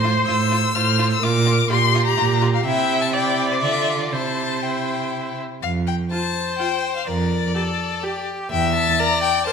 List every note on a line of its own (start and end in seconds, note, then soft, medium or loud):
0.00 0.23 A2 medium
0.00 0.75 C5 medium
0.00 0.27 C6 medium
0.05 0.13 F4 medium
0.28 0.70 A2 medium
0.28 0.36 F4 medium
0.28 0.77 E6 loud
0.52 0.60 F4 medium
0.75 1.18 A2 medium
0.75 0.84 F4 medium
0.75 1.21 C5 medium
0.75 1.10 F6 medium
0.99 1.07 F4 medium
1.11 1.24 E6 medium
1.22 1.65 A#2 medium
1.22 1.31 F4 medium
1.22 1.71 A#4 medium
1.22 1.70 D6 loud
1.46 1.54 F4 medium
1.70 2.12 A#2 medium
1.70 1.78 F4 medium
1.70 2.65 G4 medium
1.70 2.05 C6 loud
1.95 2.03 F4 medium
2.06 2.41 A#5 loud
2.17 2.60 A#2 medium
2.17 2.25 F4 medium
2.41 2.49 F4 medium
2.54 2.65 F5 medium
2.65 3.65 C3 medium
2.65 3.10 E4 medium
2.65 3.15 E5 medium
2.65 3.03 G5 loud
3.02 3.14 A5 medium
3.14 3.62 E4 medium
3.14 4.14 D5 medium
3.14 3.50 G5 loud
3.51 3.62 C5 medium
3.62 4.15 D3 medium
3.62 4.15 F4 medium
3.62 4.02 E5 medium
4.01 4.12 D5 medium
4.13 5.42 C3 medium
4.13 4.63 E4 medium
4.13 5.38 C5 medium
4.13 4.64 A5 medium
4.63 5.41 E4 medium
4.63 5.38 G5 medium
5.62 6.03 F2 medium
5.62 5.71 F5 medium
5.87 5.95 G5 medium
6.11 6.19 F4 medium
6.11 7.09 C5 medium
6.11 6.58 A5 medium
6.59 6.67 F4 medium
6.59 6.95 G5 medium
6.96 7.07 F5 medium
7.07 7.47 F2 medium
7.07 7.55 A#4 medium
7.07 8.25 D5 medium
7.55 7.63 G4 medium
7.55 8.05 A4 medium
8.03 8.11 G4 medium
8.03 8.50 G4 medium
8.51 8.91 E2 medium
8.51 9.01 E5 medium
8.51 8.74 G5 loud
8.75 9.01 A5 loud
8.99 9.07 A#4 medium
8.99 9.46 D5 medium
8.99 9.22 A#5 loud
9.23 9.46 G5 loud
9.46 9.53 A#4 medium
9.46 9.53 C5 medium
9.46 9.53 A5 loud